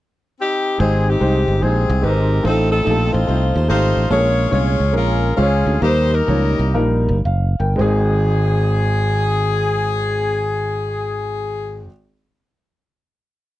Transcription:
0.39 0.79 C4 soft
0.39 0.79 D#4 medium
0.39 0.77 G4 medium
0.79 1.15 G#1 medium
0.79 1.44 G#2 medium
0.79 1.12 G#3 medium
0.79 1.07 C4 soft
0.79 1.12 D#4 medium
0.79 1.07 D#4 medium
0.79 1.13 G4 medium
0.79 1.06 G#4 medium
0.79 1.13 C5 medium
1.08 1.61 C4 medium
1.08 1.62 D#4 medium
1.08 1.63 G4 medium
1.19 1.44 C2 medium
1.19 1.53 G#3 medium
1.19 1.53 D#4 medium
1.19 1.54 G4 medium
1.19 1.54 C5 medium
1.48 1.60 G1 medium
1.61 1.85 A#1 medium
1.61 1.94 G#3 medium
1.61 2.41 C4 medium
1.61 1.95 D#4 medium
1.61 2.02 D#4 medium
1.61 1.95 G4 medium
1.61 2.03 G#4 medium
1.61 1.95 C5 medium
1.90 2.02 C2 medium
2.02 2.39 G#1 medium
2.02 2.36 G#3 medium
2.02 2.36 D#4 medium
2.02 2.42 D#4 medium
2.02 2.36 G4 medium
2.02 2.42 G4 medium
2.02 2.44 A#4 medium
2.02 2.10 B4 medium
2.08 2.38 C5 medium
2.43 2.80 A1 medium
2.43 3.09 A2 medium
2.43 2.77 A3 medium
2.43 2.70 C4 medium
2.43 2.77 D#4 medium
2.43 2.70 D#4 medium
2.43 2.77 F4 medium
2.43 2.69 A4 medium
2.43 2.78 C5 medium
2.70 3.50 C4 medium
2.70 3.11 D#4 medium
2.70 3.09 A4 medium
2.85 3.10 A#1 medium
2.85 3.18 A3 medium
2.85 3.18 D#4 medium
2.85 3.19 F4 medium
2.85 2.92 G4 medium
2.91 3.21 A4 medium
3.11 3.26 A1 medium
3.11 3.67 D#4 medium
3.11 3.67 F4 medium
3.11 3.54 C5 medium
3.26 3.51 C2 medium
3.26 3.60 A3 medium
3.26 3.60 D#4 medium
3.26 3.60 F4 medium
3.26 3.61 C5 medium
3.55 3.67 D#2 medium
3.55 3.67 C5 medium
3.68 3.92 G#1 medium
3.68 4.02 A3 medium
3.68 4.02 D#4 medium
3.68 4.07 D#4 medium
3.68 4.07 F4 medium
3.68 4.02 F4 medium
3.68 4.02 G4 medium
3.68 4.07 C5 medium
3.97 4.09 A1 medium
4.10 4.46 A#1 medium
4.10 4.75 A#2 medium
4.10 4.43 G#3 medium
4.10 4.43 C#4 medium
4.10 4.44 F4 medium
4.10 4.51 F4 medium
4.10 4.50 G#4 medium
4.10 4.17 A4 medium
4.10 4.50 C#5 medium
4.16 4.46 A#4 medium
4.51 4.75 C2 medium
4.51 4.85 G#3 medium
4.51 4.85 C#4 medium
4.51 4.85 F4 medium
4.51 4.94 F4 medium
4.51 5.33 G#4 medium
4.51 4.91 C#5 medium
4.51 4.86 C#5 medium
4.80 4.95 C#2 medium
4.92 5.31 A#1 medium
4.92 5.27 G#3 medium
4.92 5.27 C#4 medium
4.92 5.35 C#4 medium
4.92 5.28 F4 medium
4.92 5.35 F4 medium
4.92 5.28 A#4 medium
4.97 5.38 A#4 medium
5.36 5.62 C#2 medium
5.36 5.72 G#3 medium
5.36 5.78 C#4 medium
5.36 5.72 C#4 medium
5.36 5.78 F4 medium
5.36 5.72 F4 medium
5.36 5.81 G#4 medium
5.36 5.44 C5 medium
5.42 5.75 C#5 medium
5.66 5.79 D2 medium
5.81 6.21 D#2 medium
5.81 6.54 D#3 medium
5.81 6.17 G3 medium
5.81 6.18 A#3 medium
5.81 6.11 D#4 medium
5.81 6.18 D#4 medium
5.81 6.11 G4 medium
5.81 6.18 A#4 medium
5.81 6.12 C5 medium
6.12 7.04 D#4 medium
6.12 7.04 G4 medium
6.12 6.76 A#4 medium
6.27 6.54 C#2 medium
6.27 6.35 F3 medium
6.27 6.65 A#3 medium
6.27 6.66 D#4 medium
6.27 6.66 C#5 medium
6.32 6.68 G3 medium
6.59 6.76 C2 medium
6.74 7.10 A#1 medium
6.74 6.82 F3 medium
6.74 7.15 A#3 medium
6.74 7.15 D#4 medium
6.74 7.15 A#4 medium
6.78 7.17 G3 medium
7.09 7.23 G1 medium
7.25 7.55 F#1 medium
7.25 7.58 F5 medium
7.60 7.76 G1 medium
7.60 8.12 A#4 soft
7.60 8.12 G5 medium
7.76 11.87 G#1 medium
7.76 11.84 G#3 medium
7.76 11.86 C4 medium
7.76 11.88 D#4 medium
7.76 11.88 G#4 medium
7.81 11.90 G#4 medium

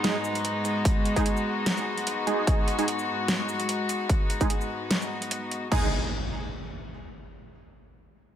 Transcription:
0.00 5.68 G#2 medium
0.00 5.68 G#3 medium
0.00 5.68 B3 medium
0.00 5.68 D#4 medium
0.00 5.70 F#4 medium
0.04 0.14 G#3 medium
0.04 0.14 D#4 medium
0.04 0.14 G#4 loud
0.04 snare loud
0.04 closed hi-hat medium
0.24 shaker medium
0.35 closed hi-hat soft
0.45 closed hi-hat medium
0.65 closed hi-hat soft
0.65 shaker medium
0.85 kick loud
0.85 closed hi-hat medium
1.05 closed hi-hat medium
1.16 1.22 G#3 medium
1.16 1.22 D#4 medium
1.16 1.22 G#4 loud
1.16 kick medium
1.16 closed hi-hat soft
1.16 shaker soft
1.26 closed hi-hat medium
1.37 shaker medium
1.66 snare loud
1.66 closed hi-hat medium
1.77 shaker medium
1.98 closed hi-hat soft
2.07 closed hi-hat medium
2.27 2.76 G#3 medium
2.27 2.76 D#4 medium
2.27 2.76 G#4 medium
2.27 closed hi-hat medium
2.47 kick loud
2.47 closed hi-hat medium
2.68 closed hi-hat medium
2.79 2.84 G#3 medium
2.79 2.84 D#4 medium
2.79 2.84 G#4 medium
2.79 closed hi-hat soft
2.79 shaker soft
2.88 closed hi-hat medium
2.99 shaker medium
3.28 snare loud
3.28 closed hi-hat medium
3.49 shaker medium
3.60 closed hi-hat medium
3.69 closed hi-hat medium
3.89 closed hi-hat medium
3.89 shaker medium
4.09 kick loud
4.09 closed hi-hat medium
4.30 closed hi-hat medium
4.41 4.46 G#3 medium
4.41 4.46 D#4 medium
4.41 4.46 G#4 loud
4.41 kick medium
4.41 closed hi-hat soft
4.41 shaker soft
4.50 closed hi-hat medium
4.61 shaker soft
4.91 snare loud
4.91 closed hi-hat medium
5.02 shaker soft
5.22 closed hi-hat medium
5.31 closed hi-hat medium
5.51 closed hi-hat medium
5.72 5.87 G#3 medium
5.72 5.91 B3 medium
5.72 5.87 D#4 medium
5.72 5.91 D#4 medium
5.72 5.87 G#4 medium
5.72 5.91 G#4 medium
5.72 kick loud
5.72 crash medium
5.72 impact medium

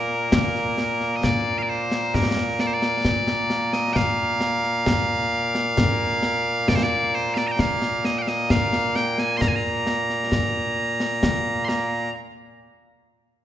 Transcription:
0.00 12.11 A#2 medium
0.00 12.11 A#3 medium
0.00 1.16 A#4 medium
0.32 concert bass drum medium
0.32 snare loud
0.55 snare soft
0.78 snare medium
1.01 snare soft
1.16 1.24 D#5 medium
1.23 1.58 D5 loud
1.23 concert bass drum medium
1.23 snare medium
1.58 1.62 F5 medium
1.63 1.69 D5 medium
1.69 2.15 C5 medium
1.92 snare medium
2.14 2.61 A#4 medium
2.14 concert bass drum medium
2.14 snare loud
2.37 snare medium
2.59 2.67 D5 medium
2.59 snare medium
2.67 2.74 C5 medium
2.74 3.73 D5 medium
2.82 snare medium
3.05 concert bass drum medium
3.05 snare medium
3.27 snare medium
3.50 snare medium
3.73 3.93 D#5 medium
3.73 snare medium
3.93 6.68 F5 loud
3.93 3.96 G5 loud
3.93 concert bass drum medium
3.93 snare medium
4.41 snare medium
4.64 snare soft
4.86 concert bass drum medium
4.86 snare loud
5.55 snare medium
5.77 concert bass drum medium
5.77 snare medium
6.23 snare medium
6.68 6.75 D5 loud
6.68 concert bass drum medium
6.68 snare medium
6.75 6.83 C5 medium
6.83 7.15 D5 loud
7.15 7.34 C5 medium
7.34 7.47 D5 medium
7.34 7.38 F5 medium
7.34 snare medium
7.47 7.51 A#5 medium
7.51 7.60 G5 medium
7.59 8.05 F5 medium
7.59 concert bass drum medium
7.59 snare medium
7.82 snare medium
8.05 8.18 D#5 medium
8.05 snare medium
8.18 8.28 F5 medium
8.18 8.22 G5 medium
8.27 8.50 D#5 medium
8.27 snare medium
8.50 8.96 F5 loud
8.50 concert bass drum medium
8.50 snare medium
8.73 snare medium
8.96 9.19 G5 medium
8.96 snare medium
9.18 9.37 G#5 loud
9.18 snare medium
9.37 9.41 C6 loud
9.37 concert bass drum medium
9.37 snare medium
9.41 9.48 A#5 loud
9.48 9.56 G#5 medium
9.56 11.65 A#5 loud
9.87 snare medium
10.09 snare soft
10.32 concert bass drum medium
10.32 snare medium
11.00 snare medium
11.23 concert bass drum medium
11.23 snare medium
11.65 12.11 A#5 medium
11.65 11.69 C6 medium
11.65 snare medium

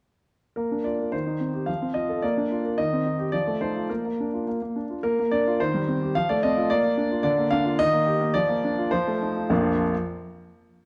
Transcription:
0.56 1.12 A#3 soft
0.56 0.85 A#4 medium
0.72 0.94 D4 soft
0.84 1.08 F4 soft
0.84 1.13 D5 medium
1.00 1.13 A#4 soft
1.12 1.67 D#3 soft
1.12 1.68 C5 medium
1.27 1.49 D#4 soft
1.40 1.63 C4 soft
1.54 1.68 G4 soft
1.66 2.21 F3 soft
1.66 1.95 F5 medium
1.82 2.04 C4 soft
1.94 2.18 F4 soft
1.94 2.22 D#5 medium
2.09 2.23 A4 soft
2.22 2.77 A#3 medium
2.22 2.78 D5 medium
2.37 2.59 D4 soft
2.51 2.73 F4 soft
2.65 2.79 A#4 soft
2.78 3.32 D#3 medium
2.78 3.33 D#5 medium
2.93 3.14 C4 soft
3.06 3.28 D#4 soft
3.19 3.33 G4 soft
3.32 3.88 F3 medium
3.32 3.61 D5 medium
3.47 3.70 A3 soft
3.61 3.84 D#4 soft
3.61 3.89 C5 medium
3.76 3.90 F4 soft
3.90 4.04 A#3 soft
3.90 4.75 A#4 medium
4.05 4.27 A#3 soft
4.20 4.42 D4 soft
4.34 4.56 F4 soft
4.47 4.60 A#3 soft
4.62 4.84 A#3 soft
4.76 4.98 D4 soft
4.90 5.04 F4 soft
5.03 5.18 A#3 medium
5.03 5.31 A#4 medium
5.19 5.41 A#3 soft
5.31 5.54 D4 soft
5.31 5.59 D5 medium
5.47 5.60 F4 medium
5.60 6.14 D#3 medium
5.60 6.15 C5 medium
5.74 5.96 G3 soft
5.88 6.10 C4 soft
6.02 6.15 G4 soft
6.15 6.69 F3 medium
6.15 6.29 F5 medium
6.29 6.51 A3 soft
6.29 6.43 D5 medium
6.43 6.65 C4 soft
6.43 6.70 D#5 medium
6.57 6.70 F4 medium
6.70 6.83 A#3 medium
6.70 7.22 D5 medium
6.84 7.05 A#3 medium
6.97 7.19 D4 soft
7.11 7.25 F4 soft
7.23 7.77 D3 medium
7.23 7.51 D5 medium
7.38 7.60 A#3 medium
7.51 7.74 D4 medium
7.51 7.78 F5 medium
7.65 7.79 F4 medium
7.79 8.34 D#3 medium
7.79 8.35 D#5 loud
7.93 8.15 A#3 medium
8.07 8.29 G4 medium
8.21 8.35 A#3 medium
8.34 8.90 F3 medium
8.34 8.92 D5 medium
8.49 8.72 A#3 medium
8.64 8.87 D4 medium
8.78 8.92 F4 medium
8.91 9.49 F3 medium
8.91 9.50 C5 medium
9.07 9.31 A3 medium
9.22 9.46 D#4 soft
9.37 9.50 F4 soft
9.50 9.82 A#1 medium
9.50 9.82 F2 medium
9.50 9.83 F3 medium
9.50 9.83 A#3 medium
9.50 9.83 D4 medium
9.50 9.83 F4 medium
9.50 9.82 A#4 medium

